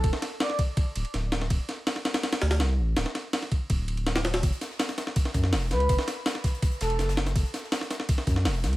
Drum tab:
RD |x-x-x-x-x-xxx-x-|x-x-x-xxxxxxx---|x-x-x-x-x-xxxxxx|x-x-x-x-x-x-x-xx|
HH |----------------|----------------|----------------|xxx-xxx-x-x-o-x-|
SD |-oo-oo------o-oo|--o-ooooooooo---|ooo-oo------oooo|--oooooo-oooo-o-|
BD |o-----o-o-------|o---------------|------o-o-------|o-------o-o-----|

RD |x-x-x-x-x-xxx-x-|x-x-x-x-x-x-x-xx|
HH |x-x-x-xxxxx-xx-x|xxx-xxx-x-x-o-x-|
SD |-oo-ooo---o-oooo|--oooooo-oooo-o-|
BD |o-----o-o-------|o-------o-o-----|